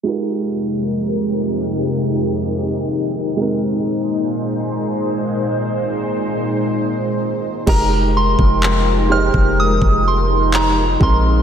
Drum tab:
CC |----------------|----------------|x---------------|
CP |----------------|----------------|----x-------x---|
BD |----------------|----------------|o--o---o-o----o-|